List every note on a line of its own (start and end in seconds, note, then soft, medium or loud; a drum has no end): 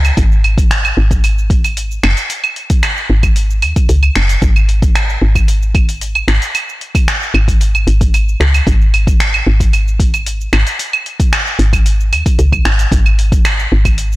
0.00 0.11 C#2 medium
0.05 open hi-hat soft
0.05 claves medium
0.05 shaker medium
0.17 0.92 G#1 loud
0.17 kick loud
0.17 open hi-hat medium
0.17 shaker medium
0.32 shaker soft
0.44 open hi-hat soft
0.44 claves medium
0.58 kick loud
0.58 open hi-hat soft
0.58 shaker medium
0.71 finger snap medium
0.71 open hi-hat medium
0.71 shaker medium
0.85 claves medium
0.85 shaker soft
0.97 1.99 G#1 medium
1.11 kick medium
1.11 open hi-hat soft
1.11 shaker medium
1.24 open hi-hat medium
1.24 claves medium
1.24 shaker medium
1.38 shaker soft
1.50 kick loud
1.50 open hi-hat medium
1.64 open hi-hat soft
1.64 claves medium
1.64 shaker medium
1.77 open hi-hat medium
1.77 shaker medium
1.91 shaker soft
2.03 2.14 F#1 loud
2.03 finger snap medium
2.03 open hi-hat soft
2.03 claves medium
2.17 open hi-hat soft
2.17 shaker medium
2.30 open hi-hat soft
2.30 shaker medium
2.44 claves medium
2.44 shaker soft
2.56 open hi-hat soft
2.70 kick loud
2.70 open hi-hat soft
2.70 shaker medium
2.83 finger snap medium
2.83 open hi-hat soft
2.83 claves medium
2.83 shaker medium
2.97 shaker soft
3.10 3.64 G#1 medium
3.23 kick medium
3.23 open hi-hat soft
3.23 claves medium
3.23 shaker medium
3.36 open hi-hat medium
3.36 shaker medium
3.50 shaker soft
3.62 3.73 D#2 medium
3.62 open hi-hat soft
3.62 claves medium
3.76 kick loud
3.76 open hi-hat soft
3.76 shaker medium
3.89 4.10 C#2 medium
3.89 open hi-hat soft
3.89 shaker medium
4.03 claves medium
4.03 shaker soft
4.15 4.36 F#1 medium
4.15 finger snap medium
4.15 open hi-hat soft
4.29 open hi-hat soft
4.29 shaker medium
4.42 5.17 G#1 loud
4.42 kick loud
4.42 open hi-hat medium
4.42 shaker medium
4.56 claves medium
4.56 shaker soft
4.69 open hi-hat soft
4.82 kick loud
4.82 open hi-hat soft
4.82 shaker medium
4.95 finger snap medium
4.95 open hi-hat medium
4.95 claves medium
4.95 shaker medium
5.10 shaker soft
5.22 6.23 G#1 medium
5.35 kick medium
5.35 open hi-hat soft
5.35 claves medium
5.35 shaker medium
5.48 open hi-hat medium
5.48 shaker medium
5.62 shaker soft
5.75 kick loud
5.75 open hi-hat soft
5.75 claves medium
5.89 open hi-hat soft
5.89 shaker medium
6.01 open hi-hat medium
6.01 shaker medium
6.15 claves medium
6.15 shaker soft
6.28 6.39 G#1 medium
6.28 finger snap medium
6.28 open hi-hat soft
6.42 open hi-hat soft
6.42 shaker medium
6.55 open hi-hat medium
6.55 claves medium
6.55 shaker medium
6.69 shaker soft
6.81 open hi-hat soft
6.95 kick loud
6.95 open hi-hat soft
6.95 claves medium
6.95 shaker medium
7.08 finger snap medium
7.08 open hi-hat medium
7.08 shaker soft
7.22 shaker soft
7.34 7.86 G#1 medium
7.34 claves medium
7.48 kick medium
7.48 open hi-hat soft
7.48 shaker medium
7.61 open hi-hat medium
7.61 shaker medium
7.75 claves medium
7.75 shaker soft
7.87 8.36 G#1 medium
7.87 open hi-hat medium
8.01 kick loud
8.01 open hi-hat soft
8.01 shaker medium
8.14 open hi-hat medium
8.14 claves medium
8.14 shaker medium
8.29 shaker soft
8.40 8.61 C#2 medium
8.40 finger snap medium
8.40 open hi-hat soft
8.54 open hi-hat soft
8.54 claves medium
8.54 shaker medium
8.67 9.42 G#1 loud
8.67 kick loud
8.67 open hi-hat medium
8.67 shaker medium
8.82 shaker soft
8.94 open hi-hat soft
8.94 claves medium
9.07 kick loud
9.07 open hi-hat soft
9.07 shaker medium
9.20 finger snap medium
9.20 open hi-hat medium
9.20 shaker medium
9.34 claves medium
9.34 shaker soft
9.47 10.48 G#1 loud
9.60 kick medium
9.60 open hi-hat soft
9.60 shaker medium
9.73 open hi-hat medium
9.73 claves medium
9.73 shaker soft
9.88 shaker soft
10.00 kick loud
10.00 open hi-hat medium
10.14 open hi-hat soft
10.14 claves medium
10.14 shaker medium
10.26 open hi-hat medium
10.26 shaker medium
10.41 shaker soft
10.53 10.63 G#1 loud
10.53 finger snap medium
10.53 open hi-hat soft
10.53 claves medium
10.67 open hi-hat soft
10.67 shaker medium
10.79 open hi-hat medium
10.79 shaker medium
10.93 claves medium
10.93 shaker soft
11.06 open hi-hat soft
11.20 kick loud
11.20 open hi-hat soft
11.20 shaker medium
11.33 finger snap medium
11.33 open hi-hat medium
11.33 claves medium
11.33 shaker soft
11.47 shaker soft
11.59 12.14 G#1 medium
11.59 open hi-hat soft
11.73 kick medium
11.73 open hi-hat soft
11.73 claves medium
11.73 shaker medium
11.86 open hi-hat medium
11.86 shaker medium
12.00 shaker soft
12.12 12.23 D#2 medium
12.12 open hi-hat medium
12.12 claves medium
12.26 kick loud
12.26 open hi-hat soft
12.26 shaker medium
12.39 12.59 C#2 medium
12.39 open hi-hat medium
12.39 shaker medium
12.52 kick medium
12.52 claves medium
12.52 shaker soft
12.65 12.86 G#1 medium
12.65 finger snap medium
12.65 open hi-hat soft
12.79 open hi-hat soft
12.79 shaker medium
12.92 13.67 G#1 medium
12.92 kick loud
12.92 open hi-hat medium
12.92 shaker medium
13.06 claves medium
13.06 shaker soft
13.19 open hi-hat soft
13.32 kick loud
13.32 open hi-hat soft
13.32 shaker medium
13.45 finger snap medium
13.45 open hi-hat medium
13.45 claves medium
13.45 shaker medium
13.59 shaker soft
13.72 14.16 G#1 medium
13.85 kick medium
13.85 open hi-hat soft
13.85 claves medium
13.85 shaker medium
13.98 open hi-hat medium
13.98 shaker medium
14.12 shaker soft